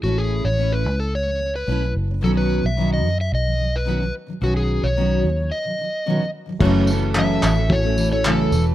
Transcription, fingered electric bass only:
X:1
M:4/4
L:1/16
Q:1/4=110
K:Bmix
V:1 name="Fingered electric bass" clef=bass
A,,,3 A,,,3 C,,6 B,,,2 F,,,2 | B,,,3 B,,,3 F,,2 B,,,6 z2 | B,,,3 B,,,3 D,,2 z8 | F,,,6 A,,,8 E,,,2 |]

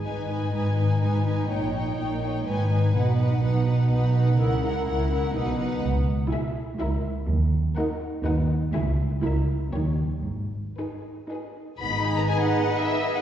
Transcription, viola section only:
X:1
M:3/4
L:1/8
Q:1/4=124
K:G#m
V:1 name="Viola section"
D D D D D D | D D D D D D | D D D D D D | E E E E D D |
z2 E2 E2 | z2 D2 D2 | E2 E2 D2 | z2 D2 D2 |
[DG]6 |]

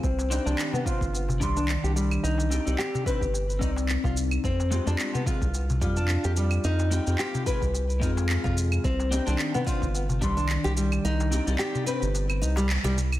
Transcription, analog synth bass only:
X:1
M:4/4
L:1/16
Q:"Swing 16ths" 1/4=109
K:Cm
V:1 name="Analog synth bass" clef=bass
C,,3 C,, z3 G,,,3 C,,3 C,,3 | C,,3 C,, z3 G,,,3 C,,3 C,,3 | F,,3 F,, z3 C,,3 F,,3 F,,3 | F,,3 F,, z3 C,,3 F,,3 F,,3 |
C,,3 C,, z3 G,,,3 C,,3 C,,3 | C,,3 C,, z3 G,,,3 C,,3 C,,3 |]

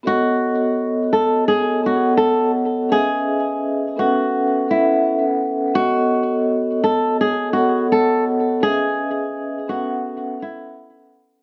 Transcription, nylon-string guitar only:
X:1
M:4/4
L:1/16
Q:"Swing 16ths" 1/4=84
K:Bmix
V:1 name="Nylon-string guitar"
F6 A2 G2 F2 A2 z2 | G6 F4 E3 z3 | F6 A2 G2 F2 A2 z2 | G6 F4 E3 z3 |]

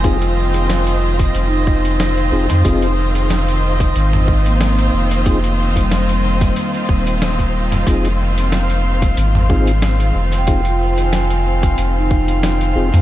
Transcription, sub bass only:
X:1
M:4/4
L:1/16
Q:"Swing 16ths" 1/4=92
K:Fm
V:1 name="Sub bass" clef=bass
F,,,8 F,,,6 F,,, F,, | F,,,8 A,,,6 F,,,2- | F,,,8 z2 E,,,6 | F,,,8 A,,,6 F,,,2- |
F,,,8 F,,,6 F,,, F,, |]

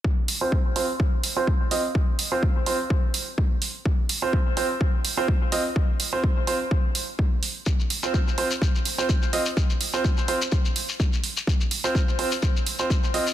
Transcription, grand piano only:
X:1
M:4/4
L:1/16
Q:"Swing 16ths" 1/4=126
K:Cm
V:1 name="Grand piano"
z3 [CFc] z2 [CFc] z4 [CFc] z2 [CFe] z | z3 [CFc] z2 [CFc] z8 z | z3 [CFc] z2 [CFc] z4 [CFc] z2 [CFe] z | z3 [CFc] z2 [CFc] z8 z |
z3 [CFc] z2 [CFc] z4 [CFc] z2 [CFe] z | z3 [CFc] z2 [CFc] z8 z | z3 [CFc] z2 [CFc] z4 [CFc] z2 [CFe] z |]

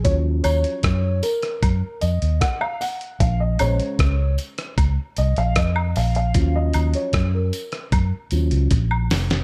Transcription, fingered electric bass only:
X:1
M:4/4
L:1/16
Q:1/4=76
K:Ebdor
V:1 name="Fingered electric bass" clef=bass
E,,2 E,, z G,,2 z2 G,, z F,, E,, z4 | B,,,2 B,,, z D,,2 z2 D,, z C,, B,,, F,,2 B,,,2 | E,,2 E,, z G,,2 z2 G,, z E,, D,, B,,,2 F,,,2 |]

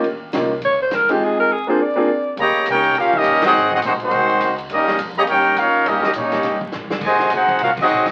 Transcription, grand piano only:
X:1
M:4/4
L:1/8
Q:"Swing" 1/4=207
K:Bbdor
V:1 name="Grand piano"
z2 [B,DEFG] z4 [A,CEFA]- | [A,CEFA]2 z [B,C=DFA] z [B,CDFA] z2 | [K:Eb] z8 | z8 |
z8 | z8 | z8 |]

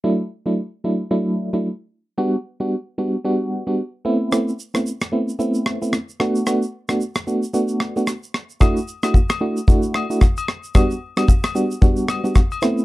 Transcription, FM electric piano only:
X:1
M:4/4
L:1/16
Q:"Swing 16ths" 1/4=112
K:Dmix
V:1 name="FM electric piano"
[F,A,DE] z2 [F,A,DE] z2 [F,A,DE] z [F,A,DE]3 [F,A,DE] z4 | [G,B,DF] z2 [G,B,DF] z2 [G,B,DF] z [G,B,DF]3 [G,B,DF] z2 [A,B,CE]2 | [A,B,CE] z2 [A,B,CE] z2 [A,B,CE] z [A,B,CE]3 [A,B,CE] z2 [A,B,DF]2 | [A,B,DF] z2 [A,B,DF] z2 [A,B,DF] z [A,B,DF]3 [A,B,DF] z4 |
[A,DEF] z2 [A,DEF] z2 [A,DEF] z [A,DEF]3 [A,DEF] z4 | [G,B,DF] z2 [G,B,DF] z2 [G,B,DF] z [G,B,DF]3 [G,B,DF] z2 [A,B,CE]2 |]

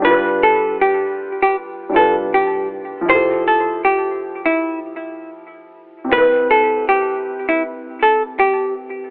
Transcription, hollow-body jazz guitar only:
X:1
M:4/4
L:1/16
Q:"Swing 16ths" 1/4=79
K:C
V:1 name="Hollow-body jazz guitar"
B2 A2 G3 G z2 A z G2 z2 | c2 A2 G3 E2 z6 z | B2 A2 G3 E z2 A z G2 z2 |]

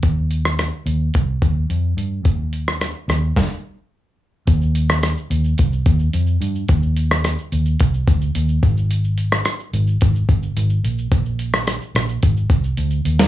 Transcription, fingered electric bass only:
X:1
M:4/4
L:1/16
Q:1/4=108
K:Eb
V:1 name="Fingered electric bass" clef=bass
E,,4- E,, z E,,2 C,,2 E,,2 F,,2 G,,2 | E,,4- E,, z E,,2 z8 | E,,4- E,, z E,,2 C,,2 E,,2 F,,2 G,,2 | E,,4- E,, z E,,2 C,,2 D,,2 E,,2 A,,,2- |
A,,,4- A,,, z A,,,2 A,,,2 G,,,2 A,,,2 B,,,2 | B,,,4- B,,, z B,,,2 A,,,2 C,,2 D,,2 E,,2 |]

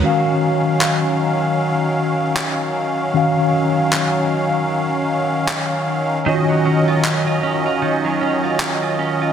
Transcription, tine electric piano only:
X:1
M:4/4
L:1/8
Q:"Swing 16ths" 1/4=77
K:Ebm
V:1 name="Tine electric piano"
[E,DGf]8 | [E,DGf]8 | [E,DFGd]8 |]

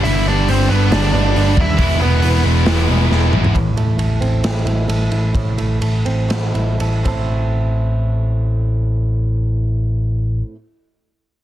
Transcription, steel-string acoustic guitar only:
X:1
M:4/4
L:1/8
Q:1/4=129
K:Am
V:1 name="Steel-string acoustic guitar"
z8 | z8 | A,, A, A, C A, E A E | A,, A, A, C A, E A [A,,A,CEA]- |
[A,,A,CEA]8- | [A,,A,CEA]8 |]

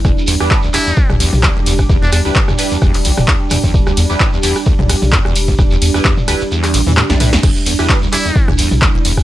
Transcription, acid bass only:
X:1
M:4/4
L:1/16
Q:"Swing 16ths" 1/4=130
K:Em
V:1 name="Acid bass" clef=bass
E,, z E,, E,, z D,, E,,, E,, z E,, E,, z D,, E,,, E,, z | E,, E,, z D,, E,,, E,, z E,, E,, z D,, E,,, E,, z E,, E,, | z D,, E,,, E,, z E,, E,, z D,, E,,, E,, z E,, E,, z D,, | E,,, E,, z E,, E,, z D,, E,,, E,,2 B,, E, A,, E,, A,, E,, |
E,, z E,, E,, z D,, E,,, E,, z E,, E,, z D,, E,,, E,, z |]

